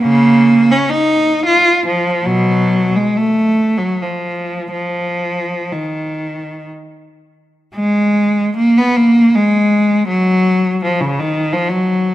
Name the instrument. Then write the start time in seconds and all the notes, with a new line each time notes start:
cello
0.02 C#3 A#3
0.71 C#4
0.90 D#4
1.46 F4
1.86 F3
2.25 B2 F#3
2.96 G#3
3.17 A3
3.78 F#3
4.02 F3
4.71 F3
5.72 D#3
7.75 G#3
8.57 A#3
8.77 B3
8.96 A#3
9.35 G#3
10.08 F#3
10.84 F3
11.01 C#3
11.19 D#3
11.53 F3
11.69 F#3